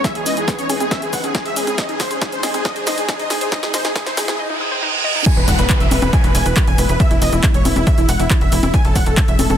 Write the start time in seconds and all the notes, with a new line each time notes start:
Already playing: E2 E3 G#3 D#4 B4, riser
0.04 E5 G#5, kick, snare, closed hi-hat, shaker
0.15 G#4, closed hi-hat
0.26 C#4 D#5, open hi-hat, shaker
0.37 G#4, closed hi-hat, shaker
0.48 B4, kick, snare, closed hi-hat, shaker
0.59 C#4 C#5, closed hi-hat, shaker
0.69 G#4 G#5, open hi-hat, high conga, shaker
0.80 G#4, closed hi-hat, high conga, shaker
0.91 C#4 E5, kick, snare, closed hi-hat, shaker
1.02 G#4, closed hi-hat, shaker
1.13 B4 F#5, kick, open hi-hat, shaker
1.24 C#4 G#4, closed hi-hat, shaker
1.35 G#4 G#5, kick, snare, closed hi-hat, shaker
1.45 G#4 E5, closed hi-hat
1.56 C#4 G#4, open hi-hat, shaker
1.67 G#4, closed hi-hat, high conga, shaker
1.78 C5 D#5, kick, snare, closed hi-hat, shaker
1.89 D#4 G#4, closed hi-hat
2.00 C5 D#6, kick, snare, open hi-hat, shaker
2.11 G#4 C5, closed hi-hat, shaker
2.22 D#4 G#4, kick, snare, closed hi-hat, shaker
2.32 C5, closed hi-hat, shaker
2.43 G#4 D#5, snare, open hi-hat, high conga, shaker
2.54 D#4 G#4, closed hi-hat, high conga, shaker
2.65 D#5 D#6, kick, snare, closed hi-hat, shaker
2.76 G#4 C5, closed hi-hat, shaker
2.87 D#4 D#5, snare, open hi-hat, shaker
2.98 G#4, closed hi-hat, shaker
3.09 G#4 D#5, kick, snare, closed hi-hat, shaker
3.19 D#4 D#5, closed hi-hat
3.30 G#4 D#6, snare, open hi-hat, shaker
3.41 G#4 C5, closed hi-hat, shaker
3.52 D#4 D#5, kick, snare, closed hi-hat, shaker
3.63 G#4, snare, closed hi-hat, shaker
3.74 C5 D#5, snare, open hi-hat, shaker
3.85 D#4 G#4, snare, closed hi-hat, shaker
3.96 G#4 D#6, kick, snare, closed hi-hat, shaker
4.06 C5, snare, closed hi-hat, shaker
4.17 D#4 G#4, snare, open hi-hat, high conga, shaker
4.28 G#4, snare, closed hi-hat, high conga, shaker
4.39 D#5, reverse cymbal
4.50 D#4
4.61 D#6
4.72 C5
4.83 D#4
5.04 D#5
5.15 D#4
5.26 G#3 B3 E4 G#5, kick, closed hi-hat, crash, downlifter, shaker
5.37 E1 B4, closed hi-hat
5.48 E1 F#5, kick, open hi-hat, shaker
5.59 E1 B4, closed hi-hat, shaker
5.70 B4, kick, clap, closed hi-hat, shaker
5.80 E1 E5, closed hi-hat, shaker
5.91 E1 B4, open hi-hat, high conga, shaker
6.02 E1 B4, closed hi-hat, high conga, shaker
6.13 G#5, kick, closed hi-hat, shaker
6.24 E1 B4, closed hi-hat, shaker
6.35 E1 G#5, open hi-hat, shaker
6.46 E1 B4, closed hi-hat, shaker
6.57 kick, clap, closed hi-hat, shaker
6.67 E1 G#5, closed hi-hat
6.78 E1 B4, open hi-hat, shaker
6.89 E1 B4, closed hi-hat, shaker
7.00 E5, kick, closed hi-hat, shaker
7.11 E1 E4, closed hi-hat
7.22 E1 D#5, open hi-hat, shaker
7.32 E1 E4, closed hi-hat, shaker
7.43 E4, kick, clap, closed hi-hat, shaker
7.54 E1 C#5, closed hi-hat, shaker
7.65 E1 E4, open hi-hat, high conga, shaker
7.76 E1 E4, closed hi-hat, high conga, shaker
7.87 E5, kick, closed hi-hat, shaker
7.98 E1 E4, closed hi-hat, shaker
8.09 E1 F#5, open hi-hat, shaker
8.19 E1 E4, closed hi-hat, shaker
8.30 E4, kick, clap, closed hi-hat, shaker
8.41 E1 E5, closed hi-hat
8.52 E1 E4, open hi-hat, shaker
8.63 E1 E4, closed hi-hat, high conga, shaker
8.74 G#3 A3 C#4 G#5, kick, closed hi-hat, shaker
8.84 E1 A4, closed hi-hat
8.95 E1 F#5, kick, open hi-hat, shaker
9.06 E1 A4, closed hi-hat, shaker
9.17 A4, kick, clap, closed hi-hat, shaker
9.28 E1 E5, closed hi-hat, shaker
9.39 E1 A4, open hi-hat, high conga, shaker
9.50 E1 A4, closed hi-hat, high conga, shaker